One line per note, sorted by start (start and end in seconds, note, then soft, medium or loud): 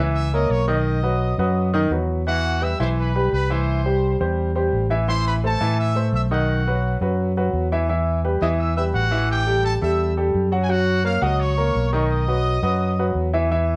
0.00 0.47 C#2 medium
0.00 0.27 E3 medium
0.00 0.27 E4 medium
0.00 0.27 E5 medium
0.15 0.32 E5 medium
0.15 0.32 E6 medium
0.33 0.62 A#3 medium
0.33 0.63 A#4 medium
0.33 0.62 C#5 medium
0.33 0.50 D#5 medium
0.33 0.50 D#6 medium
0.50 1.33 B1 medium
0.50 0.69 C#5 medium
0.50 0.69 C#6 medium
0.68 0.97 D#3 medium
0.68 0.97 D#4 medium
0.68 0.97 D#5 medium
0.68 1.88 D#5 medium
0.68 1.88 D#6 medium
1.03 1.32 F#3 medium
1.03 1.32 F#4 medium
1.03 1.33 B4 medium
1.38 1.88 F#2 medium
1.38 1.68 F#3 medium
1.38 1.68 F#4 medium
1.38 1.68 B4 medium
1.74 1.88 D#3 medium
1.74 1.88 D#4 medium
1.74 1.89 D#5 medium
1.91 2.73 E2 medium
1.91 2.20 F#3 medium
1.91 2.20 F#4 medium
1.91 2.21 B4 medium
2.27 2.56 E3 medium
2.27 2.56 E4 medium
2.27 2.60 F#4 medium
2.27 2.56 E5 medium
2.27 2.60 F#5 loud
2.61 2.76 G3 medium
2.61 2.76 G4 medium
2.61 2.76 B4 medium
2.61 2.80 E5 loud
2.61 2.80 E6 medium
2.80 3.29 B1 medium
2.80 3.08 E3 medium
2.80 3.09 E4 medium
2.80 2.89 C5 medium
2.80 3.09 E5 medium
2.80 2.89 C6 medium
2.99 3.31 B4 medium
2.99 3.31 B5 medium
3.15 3.44 G3 medium
3.15 3.44 G4 medium
3.15 3.44 B4 medium
3.33 4.15 C2 medium
3.33 3.49 B4 medium
3.33 3.49 B5 medium
3.50 3.79 E3 medium
3.50 3.79 E4 medium
3.50 4.21 C5 medium
3.50 3.79 E5 medium
3.50 4.22 C6 medium
3.85 4.14 G3 medium
3.85 4.14 G4 medium
3.85 4.14 C5 medium
4.20 4.69 E2 medium
4.20 4.49 G3 medium
4.20 4.49 G4 medium
4.20 4.49 C5 medium
4.55 4.84 G3 medium
4.55 4.84 G4 medium
4.55 4.85 C5 medium
4.73 5.55 A1 medium
4.90 5.05 E3 medium
4.90 5.05 E4 medium
4.90 5.05 E5 medium
5.08 5.37 E3 medium
5.08 5.37 E4 medium
5.08 5.25 C5 medium
5.08 5.37 E5 medium
5.08 5.25 C6 loud
5.28 5.35 B4 medium
5.28 5.35 B5 medium
5.44 5.58 A3 medium
5.44 5.58 A4 medium
5.44 5.77 A4 medium
5.44 5.58 C5 medium
5.44 5.77 A5 loud
5.61 6.10 A2 medium
5.61 5.90 E3 medium
5.61 5.90 E4 medium
5.61 5.90 E5 medium
5.80 6.12 E5 medium
5.80 6.12 E6 medium
5.95 6.24 A3 medium
5.95 6.25 A4 medium
5.95 6.25 C5 medium
6.13 6.95 B1 medium
6.13 6.23 E5 medium
6.13 6.23 E6 medium
6.31 6.60 D#3 medium
6.31 6.60 D#4 medium
6.31 6.98 F#4 medium
6.31 6.60 D#5 medium
6.31 6.98 F#5 medium
6.67 6.96 F#3 medium
6.67 6.96 F#4 medium
6.67 6.96 B4 medium
7.01 7.50 F#2 medium
7.01 7.30 F#3 medium
7.01 7.30 F#4 medium
7.01 7.31 B4 medium
7.37 7.66 F#3 medium
7.37 7.66 F#4 medium
7.37 7.66 B4 medium
7.53 8.36 E2 medium
7.72 7.86 E3 medium
7.72 7.86 E4 medium
7.72 7.87 E5 medium
7.89 8.18 E3 medium
7.89 8.18 E4 medium
7.89 8.18 E5 medium
8.24 8.39 G3 medium
8.24 8.39 G4 medium
8.24 8.39 B4 medium
8.42 8.91 E2 medium
8.42 8.71 E3 medium
8.42 8.71 E4 medium
8.42 8.50 D#5 medium
8.42 8.71 E5 medium
8.42 8.50 D#6 medium
8.60 8.76 E5 medium
8.60 8.76 E6 medium
8.77 9.06 G3 medium
8.77 9.06 G4 medium
8.77 9.06 B4 medium
8.77 8.85 E5 medium
8.77 8.85 E6 medium
8.94 9.76 A1 medium
8.94 9.27 F#4 medium
8.94 9.28 F#5 loud
9.11 9.40 E3 medium
9.11 9.41 E4 medium
9.11 9.41 E5 medium
9.30 9.63 G4 medium
9.30 9.63 G5 loud
9.47 9.76 G3 medium
9.47 9.76 G4 medium
9.47 9.76 A4 medium
9.64 9.72 A4 medium
9.64 9.73 A5 loud
9.81 10.31 E2 medium
9.81 10.11 G3 medium
9.81 10.11 G4 medium
9.81 10.11 A4 medium
9.81 10.15 E5 medium
9.81 10.16 E6 medium
10.17 10.46 G3 medium
10.17 10.46 G4 medium
10.17 10.46 A4 medium
10.34 11.17 F#2 loud
10.52 10.67 F#3 medium
10.52 10.67 F#4 medium
10.52 10.67 F#5 medium
10.63 10.70 G#5 medium
10.69 10.98 F#3 medium
10.69 10.98 F#4 medium
10.69 11.06 F#4 loud
10.69 10.99 F#5 medium
10.69 11.05 F#5 loud
11.04 11.19 A#3 medium
11.04 11.19 A#4 medium
11.04 11.19 C#5 medium
11.04 11.22 F5 loud
11.22 11.71 C#2 medium
11.22 11.51 F#3 medium
11.22 11.51 F#4 medium
11.22 11.41 D#5 medium
11.22 11.51 F#5 medium
11.22 11.41 D#6 medium
11.40 11.93 C#5 medium
11.40 11.93 C#6 medium
11.58 11.87 A#3 medium
11.58 11.86 A#4 medium
11.58 11.87 C#5 medium
11.75 12.57 B1 medium
11.93 12.22 D#3 medium
11.93 12.22 D#4 medium
11.93 12.10 C#5 medium
11.93 12.22 D#5 medium
11.93 12.10 C#6 medium
12.10 13.12 D#5 loud
12.10 13.12 D#6 medium
12.28 12.57 F#3 medium
12.28 12.57 F#4 medium
12.28 12.57 B4 medium
12.63 13.12 F#2 medium
12.63 12.92 F#3 medium
12.63 12.92 F#4 medium
12.63 12.92 B4 medium
12.99 13.28 F#3 medium
12.99 13.28 F#4 medium
12.99 13.28 B4 medium
13.15 13.76 E2 medium
13.33 13.48 E3 medium
13.33 13.48 E4 medium
13.33 13.48 E5 medium
13.51 13.76 E3 medium
13.51 13.76 E4 medium
13.51 13.76 E5 medium